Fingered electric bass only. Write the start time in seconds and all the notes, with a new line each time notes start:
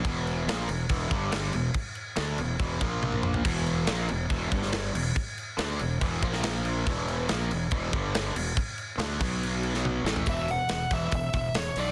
0.04 E1
0.46 A#1
0.68 E1
0.90 E1
1.11 G1
1.55 E1
1.74 muted fingered electric bass stroke
2.17 D2
2.39 E1
2.59 E1
2.81 A#1
3.45 E1
3.88 A#1
4.11 E1
4.30 E1
4.52 G1
4.95 E1
5.16 muted fingered electric bass stroke
5.59 D2
5.81 E1
6.02 E1
6.23 A#1
6.86 E1
7.30 A#1
7.52 E1
7.72 E1
7.93 G1
8.36 E1
8.57 muted fingered electric bass stroke
8.98 D2
9.20 B1
10.04 A1
10.27 E1
10.70 E1
10.91 E1
11.12 E1
11.34 E1
11.54 E1
11.76 B1